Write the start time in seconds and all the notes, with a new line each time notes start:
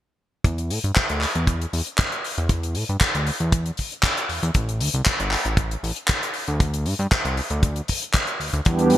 0.44 E2, kick, closed hi-hat
0.58 closed hi-hat
0.70 A2, open hi-hat
0.84 G2, closed hi-hat
0.96 kick, clap, closed hi-hat
1.09 D2, closed hi-hat
1.21 clap, open hi-hat
1.35 E2, closed hi-hat
1.47 kick, closed hi-hat
1.62 closed hi-hat
1.73 E2, open hi-hat
1.87 closed hi-hat
1.98 kick, clap, closed hi-hat
2.12 closed hi-hat
2.24 open hi-hat
2.38 E2, closed hi-hat
2.49 kick, closed hi-hat
2.63 closed hi-hat
2.75 A2, open hi-hat
2.89 G2, closed hi-hat
3.01 kick, clap, closed hi-hat
3.15 D2, closed hi-hat
3.27 open hi-hat
3.40 E2, closed hi-hat
3.52 kick, closed hi-hat
3.66 closed hi-hat
3.77 kick, open hi-hat
3.92 closed hi-hat
4.03 kick, clap, closed hi-hat
4.17 closed hi-hat
4.29 E2, open hi-hat
4.43 E2, closed hi-hat
4.54 A1, kick, closed hi-hat
4.69 closed hi-hat
4.80 D2, open hi-hat
4.94 C2, closed hi-hat
5.06 kick, clap, closed hi-hat
5.20 G1, closed hi-hat
5.31 clap, open hi-hat
5.45 A1, closed hi-hat
5.57 kick, closed hi-hat
5.71 closed hi-hat
5.83 A1, open hi-hat
5.96 closed hi-hat
6.08 kick, clap, closed hi-hat
6.23 closed hi-hat
6.34 open hi-hat
6.48 D2, closed hi-hat
6.60 kick, closed hi-hat
6.74 closed hi-hat
6.86 G2, open hi-hat
6.99 G2, closed hi-hat
7.12 kick, clap, closed hi-hat
7.25 C2, closed hi-hat
7.37 open hi-hat
7.50 D2, closed hi-hat
7.63 kick, closed hi-hat
7.76 closed hi-hat
7.88 kick, open hi-hat
8.02 closed hi-hat
8.14 kick, clap, closed hi-hat
8.27 closed hi-hat
8.40 D2, open hi-hat
8.53 D2, closed hi-hat
8.64 E2 E3 G3 B3 D4 G4, kick, closed hi-hat
8.79 closed hi-hat
8.90 A2, open hi-hat